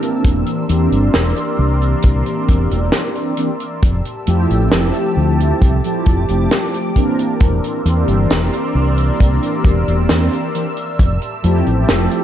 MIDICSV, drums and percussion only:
0, 0, Header, 1, 2, 480
1, 0, Start_track
1, 0, Key_signature, -1, "major"
1, 0, Tempo, 895522
1, 132, Time_signature, 4, 2, 24, 8
1, 6560, End_track
2, 0, Start_track
2, 0, Title_t, "Drums"
2, 13, Note_on_c, 9, 42, 64
2, 67, Note_off_c, 9, 42, 0
2, 132, Note_on_c, 9, 36, 122
2, 134, Note_on_c, 9, 42, 103
2, 185, Note_off_c, 9, 36, 0
2, 187, Note_off_c, 9, 42, 0
2, 248, Note_on_c, 9, 42, 57
2, 302, Note_off_c, 9, 42, 0
2, 369, Note_on_c, 9, 42, 74
2, 423, Note_off_c, 9, 42, 0
2, 493, Note_on_c, 9, 42, 51
2, 547, Note_off_c, 9, 42, 0
2, 609, Note_on_c, 9, 38, 117
2, 611, Note_on_c, 9, 42, 94
2, 663, Note_off_c, 9, 38, 0
2, 665, Note_off_c, 9, 42, 0
2, 730, Note_on_c, 9, 42, 52
2, 784, Note_off_c, 9, 42, 0
2, 973, Note_on_c, 9, 42, 57
2, 1027, Note_off_c, 9, 42, 0
2, 1084, Note_on_c, 9, 42, 104
2, 1094, Note_on_c, 9, 36, 121
2, 1138, Note_off_c, 9, 42, 0
2, 1147, Note_off_c, 9, 36, 0
2, 1211, Note_on_c, 9, 42, 57
2, 1265, Note_off_c, 9, 42, 0
2, 1331, Note_on_c, 9, 42, 89
2, 1334, Note_on_c, 9, 36, 95
2, 1384, Note_off_c, 9, 42, 0
2, 1387, Note_off_c, 9, 36, 0
2, 1454, Note_on_c, 9, 42, 55
2, 1507, Note_off_c, 9, 42, 0
2, 1566, Note_on_c, 9, 38, 113
2, 1568, Note_on_c, 9, 42, 92
2, 1619, Note_off_c, 9, 38, 0
2, 1621, Note_off_c, 9, 42, 0
2, 1690, Note_on_c, 9, 42, 60
2, 1744, Note_off_c, 9, 42, 0
2, 1806, Note_on_c, 9, 42, 84
2, 1860, Note_off_c, 9, 42, 0
2, 1931, Note_on_c, 9, 42, 58
2, 1984, Note_off_c, 9, 42, 0
2, 2052, Note_on_c, 9, 36, 116
2, 2053, Note_on_c, 9, 42, 102
2, 2106, Note_off_c, 9, 36, 0
2, 2107, Note_off_c, 9, 42, 0
2, 2172, Note_on_c, 9, 42, 58
2, 2226, Note_off_c, 9, 42, 0
2, 2288, Note_on_c, 9, 42, 86
2, 2342, Note_off_c, 9, 42, 0
2, 2415, Note_on_c, 9, 42, 56
2, 2468, Note_off_c, 9, 42, 0
2, 2528, Note_on_c, 9, 38, 127
2, 2528, Note_on_c, 9, 42, 102
2, 2581, Note_off_c, 9, 38, 0
2, 2582, Note_off_c, 9, 42, 0
2, 2645, Note_on_c, 9, 42, 50
2, 2699, Note_off_c, 9, 42, 0
2, 2896, Note_on_c, 9, 42, 63
2, 2949, Note_off_c, 9, 42, 0
2, 3011, Note_on_c, 9, 36, 127
2, 3012, Note_on_c, 9, 42, 97
2, 3064, Note_off_c, 9, 36, 0
2, 3066, Note_off_c, 9, 42, 0
2, 3131, Note_on_c, 9, 42, 60
2, 3184, Note_off_c, 9, 42, 0
2, 3247, Note_on_c, 9, 42, 81
2, 3251, Note_on_c, 9, 36, 102
2, 3300, Note_off_c, 9, 42, 0
2, 3304, Note_off_c, 9, 36, 0
2, 3367, Note_on_c, 9, 42, 63
2, 3421, Note_off_c, 9, 42, 0
2, 3488, Note_on_c, 9, 42, 92
2, 3491, Note_on_c, 9, 38, 107
2, 3542, Note_off_c, 9, 42, 0
2, 3545, Note_off_c, 9, 38, 0
2, 3612, Note_on_c, 9, 42, 53
2, 3665, Note_off_c, 9, 42, 0
2, 3729, Note_on_c, 9, 42, 75
2, 3730, Note_on_c, 9, 36, 64
2, 3783, Note_off_c, 9, 42, 0
2, 3784, Note_off_c, 9, 36, 0
2, 3853, Note_on_c, 9, 42, 61
2, 3907, Note_off_c, 9, 42, 0
2, 3968, Note_on_c, 9, 42, 93
2, 3972, Note_on_c, 9, 36, 127
2, 4022, Note_off_c, 9, 42, 0
2, 4025, Note_off_c, 9, 36, 0
2, 4095, Note_on_c, 9, 42, 59
2, 4148, Note_off_c, 9, 42, 0
2, 4211, Note_on_c, 9, 42, 78
2, 4265, Note_off_c, 9, 42, 0
2, 4330, Note_on_c, 9, 42, 59
2, 4383, Note_off_c, 9, 42, 0
2, 4450, Note_on_c, 9, 42, 102
2, 4453, Note_on_c, 9, 38, 123
2, 4504, Note_off_c, 9, 42, 0
2, 4507, Note_off_c, 9, 38, 0
2, 4573, Note_on_c, 9, 42, 54
2, 4627, Note_off_c, 9, 42, 0
2, 4812, Note_on_c, 9, 42, 56
2, 4866, Note_off_c, 9, 42, 0
2, 4932, Note_on_c, 9, 42, 102
2, 4934, Note_on_c, 9, 36, 113
2, 4986, Note_off_c, 9, 42, 0
2, 4988, Note_off_c, 9, 36, 0
2, 5053, Note_on_c, 9, 42, 55
2, 5107, Note_off_c, 9, 42, 0
2, 5170, Note_on_c, 9, 36, 107
2, 5172, Note_on_c, 9, 42, 72
2, 5224, Note_off_c, 9, 36, 0
2, 5226, Note_off_c, 9, 42, 0
2, 5295, Note_on_c, 9, 42, 52
2, 5348, Note_off_c, 9, 42, 0
2, 5409, Note_on_c, 9, 38, 127
2, 5412, Note_on_c, 9, 42, 92
2, 5463, Note_off_c, 9, 38, 0
2, 5465, Note_off_c, 9, 42, 0
2, 5538, Note_on_c, 9, 42, 58
2, 5591, Note_off_c, 9, 42, 0
2, 5653, Note_on_c, 9, 42, 72
2, 5706, Note_off_c, 9, 42, 0
2, 5771, Note_on_c, 9, 42, 56
2, 5824, Note_off_c, 9, 42, 0
2, 5891, Note_on_c, 9, 42, 84
2, 5892, Note_on_c, 9, 36, 122
2, 5945, Note_off_c, 9, 42, 0
2, 5946, Note_off_c, 9, 36, 0
2, 6011, Note_on_c, 9, 42, 52
2, 6065, Note_off_c, 9, 42, 0
2, 6130, Note_on_c, 9, 42, 74
2, 6183, Note_off_c, 9, 42, 0
2, 6252, Note_on_c, 9, 42, 57
2, 6305, Note_off_c, 9, 42, 0
2, 6371, Note_on_c, 9, 38, 113
2, 6372, Note_on_c, 9, 42, 98
2, 6424, Note_off_c, 9, 38, 0
2, 6425, Note_off_c, 9, 42, 0
2, 6492, Note_on_c, 9, 42, 50
2, 6546, Note_off_c, 9, 42, 0
2, 6560, End_track
0, 0, End_of_file